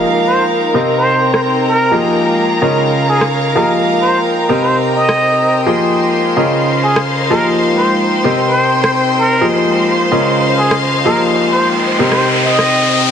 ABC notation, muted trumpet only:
X:1
M:4/4
L:1/16
Q:"Swing 16ths" 1/4=128
K:Fm
V:1 name="Muted trumpet"
z2 c z4 z c3 c c z B2 | z8 z2 A z3 B z | z2 c z4 c z2 e6 | z8 z2 A z3 B z |
z2 c z4 z c3 c c z B2 | z8 z2 A z3 B z | z2 c z4 c z2 e6 |]